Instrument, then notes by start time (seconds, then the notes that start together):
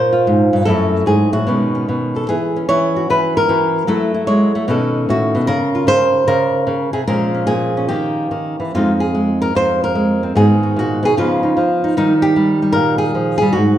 nylon-string guitar
Already playing: A#2 A#3 F4 A#4 C5
0.12 F4
0.27 G#2
0.53 G2
0.65 F#2 F#3 A3 E4 A4
1.06 G#2 G#4
1.32 A2 F#4
1.47 B2 D#3 G#3 C#4
1.75 C#4
1.89 B2
2.16 A4
2.29 E3 G#4
2.56 C#4
2.69 E3 C#5
2.96 F#4
3.10 E3 B4
3.37 A#4
3.49 E3 F#4
3.87 F#3 A3 E4 A4
4.14 E4
4.27 G#3 C#5
4.55 A3
4.68 B2 D#3 C#4 F#4 A4
5.09 A2 F#4
5.35 B2
5.47 C#3 A#4
5.75 F4
5.87 C#3 C5
6.27 C#3 A#4
6.67 C#3
6.93 C3 G#4
7.07 A#2 F3 G#3 C#4 A#4
7.34 C#4
7.47 A#2 G#4
7.77 C#4
7.88 D#3 A#3 C#4 G4
8.31 D#3
8.60 E3
8.75 F2 G#3 C4 D#4 F4
9.00 G#4
9.15 G#3
9.42 A#4
9.55 F2 C5
9.84 A#4
9.95 G#3
10.23 C4
10.35 G#2 D#3 B3 F#4 G#4
10.63 F#4
10.76 A#2 F#4
11.03 B2 G#4
11.17 C#3 F3 B3 D#4 F4
11.43 D#4
11.57 F3
11.84 D#4
11.97 D#3 G3 D#4
12.22 G4
12.36 G3
12.62 G3
12.73 A#2 A#4
12.98 G#4
13.15 F3
13.38 G3 G#4
13.53 G#2 F#4